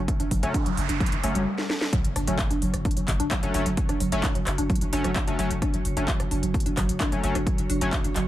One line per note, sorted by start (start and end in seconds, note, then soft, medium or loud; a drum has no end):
0.08 kick loud
0.08 closed hi-hat medium
0.08 noise sweep medium
0.20 0.31 F#1 medium
0.20 0.23 D4 loud
0.20 closed hi-hat medium
0.31 0.42 F#1 loud
0.31 0.37 F#3 medium
0.31 kick medium
0.31 open hi-hat loud
0.43 0.54 F#1 medium
0.43 0.54 F#3 medium
0.43 0.53 A3 medium
0.43 0.53 C#4 loud
0.43 closed hi-hat medium
0.54 0.58 D4 loud
0.54 kick loud
0.54 closed hi-hat medium
0.66 0.77 F#1 medium
0.66 0.72 F#3 medium
0.66 closed hi-hat medium
0.77 0.88 F#1 loud
0.77 open hi-hat medium
0.89 1.00 F#1 medium
0.89 0.93 D4 loud
0.89 closed hi-hat medium
1.00 1.06 F#3 medium
1.00 kick loud
1.00 closed hi-hat soft
1.06 closed hi-hat medium
1.12 1.23 F#1 medium
1.12 closed hi-hat medium
1.24 1.35 F#1 loud
1.24 1.41 F#3 medium
1.24 1.30 A3 medium
1.24 1.41 A3 medium
1.24 1.41 C#4 loud
1.24 open hi-hat loud
1.35 1.46 F#1 medium
1.35 1.44 G3 loud
1.35 closed hi-hat medium
1.58 snare medium
1.70 snare medium
1.81 snare medium
1.93 1.99 F#3 medium
1.93 8.28 F#3 medium
1.93 kick loud
1.93 closed hi-hat medium
1.93 impact medium
2.04 2.15 F#1 medium
2.04 closed hi-hat medium
2.16 2.27 F#1 loud
2.16 2.19 D4 loud
2.16 cross-stick medium
2.16 open hi-hat loud
2.27 2.39 F#1 medium
2.27 2.33 F#3 medium
2.27 2.38 F#3 medium
2.27 2.38 A3 medium
2.27 2.38 C#4 medium
2.27 closed hi-hat medium
2.39 kick loud
2.39 clap loud
2.39 closed hi-hat medium
2.51 2.61 F#1 medium
2.51 2.54 D4 loud
2.51 closed hi-hat medium
2.62 2.73 F#1 loud
2.62 2.68 F#3 medium
2.62 open hi-hat medium
2.74 2.85 F#1 medium
2.74 cross-stick medium
2.74 closed hi-hat medium
2.85 2.89 D4 medium
2.85 kick loud
2.85 closed hi-hat medium
2.91 closed hi-hat medium
2.97 3.08 F#1 medium
2.97 3.03 F#3 medium
2.97 closed hi-hat medium
3.08 3.19 F#1 loud
3.08 kick medium
3.08 clap medium
3.08 open hi-hat loud
3.20 3.31 F#1 medium
3.20 3.23 D4 loud
3.20 closed hi-hat medium
3.31 3.37 F#3 medium
3.31 kick loud
3.31 cross-stick medium
3.31 clap loud
3.31 closed hi-hat medium
3.43 3.54 F#1 medium
3.43 3.53 F#3 medium
3.43 3.53 A3 medium
3.43 3.53 C#4 medium
3.43 closed hi-hat medium
3.54 3.65 F#1 loud
3.54 3.65 F#3 medium
3.54 3.65 A3 medium
3.54 3.65 C#4 medium
3.54 3.58 D4 loud
3.54 open hi-hat medium
3.66 3.77 F#1 medium
3.66 3.72 F#3 medium
3.66 closed hi-hat medium
3.77 kick loud
3.77 closed hi-hat medium
3.89 4.00 F#1 medium
3.89 3.93 D4 medium
3.89 cross-stick medium
3.89 closed hi-hat medium
4.00 4.12 F#1 medium
4.00 4.06 F#3 medium
4.00 open hi-hat loud
4.12 4.23 F#1 medium
4.12 4.23 F#3 medium
4.12 4.23 A3 medium
4.12 4.23 C#4 loud
4.12 closed hi-hat medium
4.23 4.27 D4 loud
4.23 kick loud
4.23 clap loud
4.23 closed hi-hat medium
4.35 4.46 F#1 medium
4.35 4.41 F#3 medium
4.35 closed hi-hat medium
4.47 4.58 F#1 loud
4.47 cross-stick medium
4.47 clap medium
4.47 open hi-hat medium
4.58 4.69 F#1 medium
4.58 4.62 D4 loud
4.58 closed hi-hat medium
4.70 4.76 F#3 medium
4.70 kick loud
4.70 closed hi-hat medium
4.75 closed hi-hat medium
4.81 4.92 F#1 medium
4.81 closed hi-hat medium
4.93 5.04 F#1 loud
4.93 5.10 F#3 medium
4.93 5.10 A3 medium
4.93 5.10 C#4 loud
4.93 4.96 D4 loud
4.93 open hi-hat loud
5.04 5.16 F#1 medium
5.04 5.10 F#3 medium
5.04 cross-stick medium
5.04 closed hi-hat medium
5.16 kick loud
5.16 clap loud
5.16 closed hi-hat medium
5.27 5.38 F#1 medium
5.27 5.37 F#3 medium
5.27 5.37 A3 medium
5.27 5.37 C#4 medium
5.27 5.31 D4 loud
5.27 closed hi-hat medium
5.39 5.50 F#1 loud
5.39 5.45 F#3 medium
5.39 5.50 F#3 medium
5.39 5.50 A3 medium
5.39 5.50 C#4 loud
5.39 open hi-hat medium
5.51 5.62 F#1 medium
5.51 closed hi-hat medium
5.62 5.66 D4 loud
5.62 kick loud
5.62 cross-stick medium
5.62 closed hi-hat medium
5.74 5.85 F#1 medium
5.74 5.80 F#3 medium
5.74 closed hi-hat medium
5.85 5.96 F#1 medium
5.85 open hi-hat loud
5.97 6.08 F#1 medium
5.97 6.07 F#3 medium
5.97 6.07 A3 medium
5.97 6.07 C#4 medium
5.97 6.00 D4 loud
5.97 closed hi-hat medium
6.08 6.14 F#3 medium
6.08 kick loud
6.08 clap loud
6.08 closed hi-hat medium
6.20 6.31 F#1 medium
6.20 cross-stick medium
6.20 closed hi-hat medium
6.31 6.42 F#1 loud
6.31 6.35 D4 loud
6.31 open hi-hat medium
6.43 6.54 F#1 medium
6.43 6.49 F#3 medium
6.43 closed hi-hat medium
6.54 kick loud
6.54 closed hi-hat soft
6.60 closed hi-hat medium
6.66 6.77 F#1 medium
6.66 6.69 D4 loud
6.66 closed hi-hat medium
6.77 6.88 F#1 loud
6.77 6.83 F#3 medium
6.77 kick medium
6.77 cross-stick medium
6.77 clap medium
6.77 open hi-hat loud
6.89 7.00 F#1 medium
6.89 closed hi-hat medium
7.00 7.04 D4 loud
7.00 kick loud
7.00 clap loud
7.00 closed hi-hat medium
7.12 7.23 F#1 medium
7.12 7.18 F#3 medium
7.12 7.22 F#3 medium
7.12 7.22 A3 medium
7.12 7.22 C#4 medium
7.12 closed hi-hat medium
7.24 7.35 F#1 loud
7.24 7.34 F#3 medium
7.24 7.34 A3 medium
7.24 7.34 C#4 loud
7.24 open hi-hat loud
7.35 7.46 F#1 medium
7.35 7.39 D4 loud
7.35 cross-stick medium
7.35 closed hi-hat medium
7.47 7.53 F#3 medium
7.47 kick loud
7.47 closed hi-hat medium
7.58 7.69 F#1 medium
7.58 closed hi-hat medium
7.70 7.81 F#1 medium
7.70 7.73 D4 loud
7.70 open hi-hat loud
7.81 7.93 F#1 medium
7.81 7.87 F#3 medium
7.81 7.92 F#3 medium
7.81 7.92 A3 medium
7.81 7.92 C#4 loud
7.81 closed hi-hat medium
7.93 kick loud
7.93 cross-stick medium
7.93 clap loud
7.93 closed hi-hat medium
8.04 8.15 F#1 medium
8.04 8.08 D4 loud
8.04 closed hi-hat medium
8.16 8.27 F#1 loud
8.16 8.22 F#3 medium
8.16 clap medium
8.16 open hi-hat medium